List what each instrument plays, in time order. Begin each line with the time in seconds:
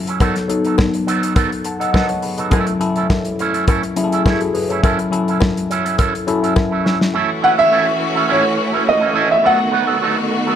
Already playing: tine electric piano F#3 C#4 E4 F4 F#4 A4
0.07 clean electric guitar F#3 C#4 E4 A4, closed hi-hat
0.20 tine electric piano F#3 B3 D#4 A4, clean electric guitar F#3 B3 D#4 A4, kick, closed hi-hat, cowbell
0.36 muted clean electric guitar stroke, snare, closed hi-hat
0.48 tine electric piano F#3 B3 D#4 A4, muted clean electric guitar stroke, closed hi-hat
0.64 clean electric guitar F#3 B3 D#4 A4, closed hi-hat
0.78 kick, snare, cowbell
0.94 muted clean electric guitar stroke, closed hi-hat
1.07 clean electric guitar F#3 B3 D#4 A4, closed hi-hat
1.22 clean electric guitar F#3 B3 D#4 A4, closed hi-hat
1.35 clean electric guitar F#3 B3 D#4 A4, kick, closed hi-hat, cowbell
1.51 muted clean electric guitar stroke, closed hi-hat
1.64 tine electric piano F#5 A5, muted clean electric guitar stroke, closed hi-hat
1.79 clean electric guitar F#3 B3 D#4 A4, tine electric piano D#5 F#5, closed hi-hat
1.93 clean electric guitar F#3 B3 D#4 A4, tine electric piano B4 D#5, kick, snare, cowbell
2.08 tine electric piano A4 C#5, muted clean electric guitar stroke, closed hi-hat
2.22 tine electric piano G#4 B4, muted clean electric guitar stroke, open hi-hat
2.38 clean electric guitar F#3 B3 D#4 A4, tine electric piano B4 D#5, closed hi-hat
2.50 tine electric piano F#3 C#4 E4 A4, clean electric guitar A3 C#4 E4 A4, kick, closed hi-hat, cowbell
2.67 muted clean electric guitar stroke, closed hi-hat
2.79 tine electric piano F#3 C#4 E4 A4, muted clean electric guitar stroke, closed hi-hat
2.96 clean electric guitar A3 C#4 E4 A4, closed hi-hat
3.10 kick, snare, cowbell
3.25 muted clean electric guitar stroke, closed hi-hat
3.39 clean electric guitar A3 C#4 E4 A4, closed hi-hat
3.54 clean electric guitar A3 C#4 E4 A4, closed hi-hat
3.68 clean electric guitar A3 C#4 E4 A4, kick, closed hi-hat, cowbell
3.83 muted clean electric guitar stroke, closed hi-hat
3.96 tine electric piano F#3 C#4 E4 G#4, muted clean electric guitar stroke, closed hi-hat
4.04 tine electric piano A4
4.12 clean electric guitar A3 C#4 E4 A4, closed hi-hat
4.26 clean electric guitar A3 C#4 E4 A4, tine electric piano E4 G#4, kick, snare, cowbell
4.41 tine electric piano F#4 A4, muted clean electric guitar stroke, closed hi-hat
4.54 tine electric piano G#4 B4, muted clean electric guitar stroke, open hi-hat
4.69 clean electric guitar A3 C#4 E4 A4, tine electric piano A4 C#5, closed hi-hat
4.82 tine electric piano F#3 C#4 E4 A4, clean electric guitar F#3 C#4 E4 A4, kick, closed hi-hat, cowbell
4.99 muted clean electric guitar stroke, closed hi-hat
5.11 tine electric piano F#3 C#4 E4 A4, muted clean electric guitar stroke, closed hi-hat
5.28 clean electric guitar F#3 C#4 E4 A4, closed hi-hat
5.40 muted clean electric guitar stroke, kick, snare, cowbell
5.57 muted clean electric guitar stroke, closed hi-hat
5.70 clean electric guitar F#3 C#4 E4 A4, closed hi-hat
5.85 clean electric guitar F#3 C#4 E4 A4, closed hi-hat
5.98 clean electric guitar F#3 C#4 E4 A4, kick, closed hi-hat, cowbell
6.14 muted clean electric guitar stroke, closed hi-hat
6.27 tine electric piano F#3 C#4 E4 A4, muted clean electric guitar stroke, closed hi-hat
6.42 clean electric guitar F#3 C#4 E4 A4, closed hi-hat
6.56 kick, snare, cowbell
6.71 clean electric guitar F#3 C#4 E4 A4
6.84 clean electric guitar F#3 C#4 E4 A4, snare
7.01 snare
7.14 string section E3 A3 C#4 F#4, clean electric guitar A3 C#4 E4 A4
7.42 clean electric guitar A3 C#4 E4 B4, grand piano F#5
7.58 clean electric guitar A3 C#4 E4 A4, grand piano E5
7.71 clean electric guitar A3 C#4 E4 A4
7.87 muted clean electric guitar stroke
8.00 muted clean electric guitar stroke
8.15 clean electric guitar A3 C#4 E4 A4
8.28 clean electric guitar A3 C#4 E4 A4, grand piano C#5
8.44 muted clean electric guitar stroke
8.57 muted clean electric guitar stroke
8.72 clean electric guitar A3 C#4 E4 A4
8.85 grand piano D#5, muted clean electric guitar stroke
9.00 clean electric guitar A3 C#4 E4 A4
9.14 clean electric guitar A3 C#4 E4 A4
9.30 grand piano E5, muted clean electric guitar stroke
9.44 string section D#3 B3 F#4, clean electric guitar F#3 B3 D#4 A4, grand piano F#5
9.72 clean electric guitar F#3 B3 D#4 B4
9.87 clean electric guitar F#3 B3 D#4 A4
10.01 clean electric guitar F#3 B3 D#4 A4
10.17 muted clean electric guitar stroke
10.31 muted clean electric guitar stroke
10.46 clean electric guitar F#3 B3 D#4 A4